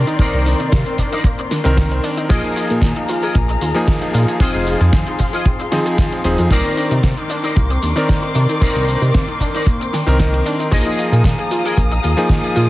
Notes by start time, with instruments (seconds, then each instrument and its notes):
Already playing: electric grand piano D#3 C4 A#4 D5, string section A#4 D5 C6, impact
0.07 synth arpeggio sound D#4, muted clean electric guitar stroke, closed hi-hat, shaker
0.19 analog synth bass C2, electric grand piano D#3 C4 A#4 D5, synth arpeggio sound A#3, clean electric guitar D#4 A#4 C5 D5, kick, closed hi-hat, shaker
0.33 analog synth bass C2, synth arpeggio sound C4, closed hi-hat
0.46 synth arpeggio sound D4, open hi-hat, shaker
0.60 analog synth bass C3, synth arpeggio sound D#4, closed hi-hat, shaker
0.72 analog synth bass C3, synth arpeggio sound A#3, kick, snare, closed hi-hat, shaker
0.86 synth arpeggio sound C4, closed hi-hat
0.98 synth arpeggio sound D4, muted clean electric guitar stroke, kick, open hi-hat, shaker
1.12 clean electric guitar D#4 A#4 C5 D5, synth arpeggio sound D#4, closed hi-hat, shaker
1.24 synth arpeggio sound A#3, kick, closed hi-hat, shaker
1.38 synth arpeggio sound C4, muted clean electric guitar stroke, closed hi-hat, shaker
1.51 synth arpeggio sound D4, muted clean electric guitar stroke, snare, open hi-hat, shaker
1.64 analog synth bass C2, electric grand piano D#3 C4 A#4, synth arpeggio sound D#4, closed hi-hat, shaker
1.76 synth arpeggio sound A#3, muted clean electric guitar stroke, kick, snare, closed hi-hat, shaker
1.91 synth arpeggio sound C4, muted clean electric guitar stroke, closed hi-hat
2.03 synth arpeggio sound D4, muted clean electric guitar stroke, open hi-hat, shaker
2.17 synth arpeggio sound D#4, muted clean electric guitar stroke, closed hi-hat, shaker
2.29 analog synth bass A#1, electric grand piano F3 A#3 D#4 G#4, synth arpeggio sound A#3, clean electric guitar F4 G#4 A#4 D#5, string section G#4 F5 A#5, kick, closed hi-hat, shaker
2.44 synth arpeggio sound D#4, closed hi-hat
2.56 synth arpeggio sound F4, open hi-hat, shaker
2.70 analog synth bass A#2, synth arpeggio sound G#4, closed hi-hat, shaker
2.82 analog synth bass A#2, synth arpeggio sound A#3, kick, snare, closed hi-hat, shaker
2.96 synth arpeggio sound D#4, closed hi-hat
3.08 synth arpeggio sound F4, muted clean electric guitar stroke, open hi-hat, shaker
3.22 clean electric guitar F4 G#4 A#4 D#5, synth arpeggio sound G#4, closed hi-hat, shaker
3.35 analog synth bass A#1, synth arpeggio sound A#3, kick, closed hi-hat, shaker
3.48 synth arpeggio sound D#4, muted clean electric guitar stroke, closed hi-hat, shaker
3.61 analog synth bass D#2, synth arpeggio sound F4, muted clean electric guitar stroke, open hi-hat, shaker
3.74 electric grand piano F3 A#3 D#4 G#4, synth arpeggio sound G#4, closed hi-hat, shaker
3.88 synth arpeggio sound A#3, muted clean electric guitar stroke, kick, snare, closed hi-hat, shaker
4.01 synth arpeggio sound D#4, muted clean electric guitar stroke, closed hi-hat
4.14 analog synth bass A#2, synth arpeggio sound F4, muted clean electric guitar stroke, open hi-hat, shaker
4.28 synth arpeggio sound G#4, muted clean electric guitar stroke, closed hi-hat, shaker
4.40 analog synth bass F1, electric grand piano F3 C4 D#4 G#4, synth arpeggio sound C4, clean electric guitar F4 G#4 C5 D#5, string section C6, kick, closed hi-hat, shaker
4.54 analog synth bass F1, synth arpeggio sound D#4, closed hi-hat
4.67 synth arpeggio sound F4, open hi-hat, shaker
4.81 analog synth bass F2, synth arpeggio sound G#4, closed hi-hat, shaker
4.93 analog synth bass F2, synth arpeggio sound C4, kick, snare, closed hi-hat, shaker
5.07 synth arpeggio sound D#4, closed hi-hat
5.19 synth arpeggio sound F4, muted clean electric guitar stroke, kick, open hi-hat, shaker
5.33 clean electric guitar F4 G#4 C5 D#5, synth arpeggio sound G#4, closed hi-hat, shaker
5.46 synth arpeggio sound C4, kick, closed hi-hat, shaker
5.59 synth arpeggio sound D#4, muted clean electric guitar stroke, closed hi-hat, shaker
5.72 electric grand piano F3 C4 D#4 G#4, synth arpeggio sound C4, muted clean electric guitar stroke, snare, open hi-hat, shaker
5.86 synth arpeggio sound G#4, closed hi-hat, shaker
5.98 synth arpeggio sound F4, muted clean electric guitar stroke, kick, snare, closed hi-hat, shaker
6.12 synth arpeggio sound C4, muted clean electric guitar stroke, closed hi-hat
6.24 analog synth bass D#1, electric grand piano F3 C4 D#4 G#4, synth arpeggio sound C5, muted clean electric guitar stroke, open hi-hat, shaker
6.38 analog synth bass F2, synth arpeggio sound F4, muted clean electric guitar stroke, closed hi-hat, shaker
6.50 analog synth bass C2, electric grand piano D#3 C4 A#4 D5, synth arpeggio sound A#3, clean electric guitar D#4 A#4 C5 D5, string section A#4 C6 D6, kick, closed hi-hat, shaker
6.65 synth arpeggio sound C4, closed hi-hat
6.77 synth arpeggio sound D4, open hi-hat, shaker
6.91 analog synth bass C3, synth arpeggio sound D#4, closed hi-hat, shaker
7.03 analog synth bass C3, synth arpeggio sound A#3, kick, snare, closed hi-hat, shaker
7.17 synth arpeggio sound D#4, closed hi-hat
7.29 synth arpeggio sound D4, muted clean electric guitar stroke, open hi-hat, shaker
7.43 clean electric guitar D#4 A#4 C5 D5, synth arpeggio sound D#4, closed hi-hat, shaker
7.56 analog synth bass C2, synth arpeggio sound A#3, kick, closed hi-hat, shaker
7.69 synth arpeggio sound C4, muted clean electric guitar stroke, closed hi-hat, shaker
7.82 analog synth bass D#2, synth arpeggio sound D4, muted clean electric guitar stroke, open hi-hat, shaker
7.96 electric grand piano D#3 C4 A#4 D5, synth arpeggio sound D#4, closed hi-hat, shaker
8.08 synth arpeggio sound A#3, muted clean electric guitar stroke, kick, snare, closed hi-hat, shaker
8.22 synth arpeggio sound D#4, muted clean electric guitar stroke, closed hi-hat
8.34 analog synth bass C3, synth arpeggio sound D4, muted clean electric guitar stroke, open hi-hat, shaker
8.48 synth arpeggio sound D#4, muted clean electric guitar stroke, closed hi-hat, shaker
8.61 analog synth bass C2, electric grand piano D#3 C4 A#4 D5, synth arpeggio sound A#3, clean electric guitar D#4 A#4 C5 D5, kick, closed hi-hat, shaker
8.75 analog synth bass C2, synth arpeggio sound C4, closed hi-hat
8.88 synth arpeggio sound D4, open hi-hat, shaker
9.02 analog synth bass C3, synth arpeggio sound D#4, closed hi-hat, shaker
9.14 analog synth bass C3, synth arpeggio sound A#3, kick, snare, closed hi-hat, shaker
9.28 synth arpeggio sound D#4, closed hi-hat
9.40 synth arpeggio sound D4, muted clean electric guitar stroke, kick, open hi-hat, shaker
9.54 clean electric guitar D#4 A#4 C5 D5, synth arpeggio sound D#4, closed hi-hat, shaker
9.67 synth arpeggio sound A#3, kick, closed hi-hat, shaker
9.80 synth arpeggio sound C4, muted clean electric guitar stroke, closed hi-hat, shaker
9.93 synth arpeggio sound D4, clean electric guitar G5, muted clean electric guitar stroke, snare, open hi-hat, shaker
10.06 analog synth bass C2, electric grand piano D#3 C4 A#4, synth arpeggio sound D#4, closed hi-hat, shaker
10.19 synth arpeggio sound A#3, clean electric guitar D#5, muted clean electric guitar stroke, kick, snare, closed hi-hat, shaker
10.33 synth arpeggio sound D#4, muted clean electric guitar stroke, closed hi-hat
10.45 synth arpeggio sound D4, muted clean electric guitar stroke, open hi-hat, shaker
10.59 synth arpeggio sound D#4, muted clean electric guitar stroke, closed hi-hat, shaker
10.71 analog synth bass A#1, electric grand piano F3 A#3 D#4 G#4, synth arpeggio sound A#3, clean electric guitar F4 G#4 A#4 D#5, string section G#4 F5 A#5 D#6, kick, closed hi-hat, shaker
10.86 synth arpeggio sound D#4, closed hi-hat
10.98 synth arpeggio sound F4, open hi-hat, shaker
11.12 analog synth bass A#2, synth arpeggio sound G#4, closed hi-hat, shaker
11.24 analog synth bass A#2, synth arpeggio sound A#3, kick, snare, closed hi-hat, shaker
11.39 synth arpeggio sound G#4, closed hi-hat
11.50 synth arpeggio sound F4, muted clean electric guitar stroke, open hi-hat, shaker
11.64 clean electric guitar F4 G#4 A#4 D#5, synth arpeggio sound G#4, closed hi-hat, shaker
11.77 analog synth bass A#1, synth arpeggio sound A#3, kick, closed hi-hat, shaker
11.90 synth arpeggio sound D#4, muted clean electric guitar stroke, closed hi-hat, shaker
12.03 analog synth bass D#2, synth arpeggio sound F4, muted clean electric guitar stroke, open hi-hat, shaker
12.17 electric grand piano F3 A#3 D#4 G#4, synth arpeggio sound G#4, closed hi-hat, shaker
12.29 synth arpeggio sound A#3, muted clean electric guitar stroke, kick, snare, closed hi-hat, shaker
12.43 synth arpeggio sound G#4, muted clean electric guitar stroke, closed hi-hat
12.55 analog synth bass A#2, synth arpeggio sound F4, muted clean electric guitar stroke, open hi-hat, shaker